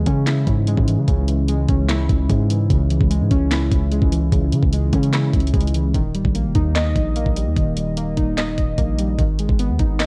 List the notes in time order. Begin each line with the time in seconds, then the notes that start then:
Already playing: C#3 E3 G#3
0.06 C#3 C#4, kick, closed hi-hat
0.27 E4, snare, clap, closed hi-hat
0.47 G#2, kick, closed hi-hat
0.67 G#3, closed hi-hat
0.77 G#2, kick
0.88 E3, closed hi-hat
0.98 C#3
1.08 C#2 C#3, kick, closed hi-hat
1.28 E3, closed hi-hat
1.48 G#3, closed hi-hat
1.69 C#2 C#4, kick, closed hi-hat
1.89 E4, snare, clap, closed hi-hat
2.09 C#2, kick, closed hi-hat
2.29 G#2 G#3, kick, closed hi-hat
2.50 E3, closed hi-hat
2.70 C#2 C#3, kick, closed hi-hat
2.90 E3, closed hi-hat
3.00 C#2, kick
3.10 G#3, closed hi-hat
3.21 G#2
3.31 C#2 C#4, kick, closed hi-hat
3.51 E4, snare, clap, closed hi-hat
3.71 C#2, kick, closed hi-hat
3.92 G#3, closed hi-hat
4.02 C#2, kick
4.12 E3, closed hi-hat
4.32 C#2 C#3, kick, closed hi-hat
4.52 C#3 E3, closed hi-hat
4.63 C#2, kick
4.73 G#3, closed hi-hat
4.93 C#3 C#4, kick, closed hi-hat, open hi-hat
5.03 closed hi-hat
5.13 E4, snare, clap, closed hi-hat
5.34 C#2, kick, closed hi-hat
5.40 closed hi-hat
5.47 closed hi-hat
5.54 C#2 G#3, kick, closed hi-hat
5.61 closed hi-hat
5.67 closed hi-hat
5.74 E3, closed hi-hat
5.94 D#1 D#3, kick, closed hi-hat
6.15 C#1 G3, closed hi-hat
6.25 A#1, kick
6.35 A#3, closed hi-hat
6.45 E1
6.55 D#2 D#4, kick, closed hi-hat
6.75 D#5, snare, clap, closed hi-hat
6.96 A#1, kick, closed hi-hat
7.16 A#3, closed hi-hat
7.26 A#1, kick
7.36 G3, closed hi-hat
7.46 D#2
7.57 D#1 D#3, kick, closed hi-hat
7.77 G3, closed hi-hat
7.97 A#3, closed hi-hat
8.17 D#1 D#4, kick, closed hi-hat
8.38 D#5, snare, clap, closed hi-hat
8.58 D#1, kick, closed hi-hat
8.78 A#1 A#3, kick, closed hi-hat
8.99 G3, closed hi-hat
9.19 G#1 D#3, kick, closed hi-hat
9.39 G#3, closed hi-hat
9.49 G#1, kick
9.59 B3, closed hi-hat
9.69 D#2
9.79 G#1 D#4, kick, closed hi-hat
10.00 D#5, snare, clap, closed hi-hat